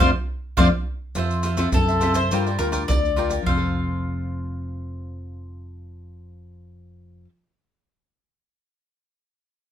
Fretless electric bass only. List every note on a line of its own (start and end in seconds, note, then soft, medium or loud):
0.00 0.11 F2 medium
0.58 0.69 F2 medium
1.17 1.65 F2 medium
1.74 2.32 F#2 medium
2.32 2.56 G2 loud
2.59 2.84 D2 medium
2.88 3.38 D2 medium
3.47 7.25 F1 medium